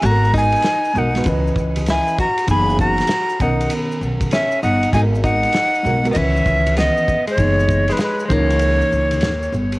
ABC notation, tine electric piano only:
X:1
M:4/4
L:1/16
Q:"Swing 16ths" 1/4=98
K:C#dor
V:1 name="Tine electric piano"
[G,B,F=A^A]4 z2 [G,B,FA] [G,B,FB] [E,CBd]6 z2 | [E,B,DG]4 z2 [D,B,CA]6 z4 | [G,B,F=A^A]4 z2 [G,B,FA] [G,B,FA] [D,E,CB]6 z2 | [E,B,DG]4 z2 [E,CDA]6 z4 |]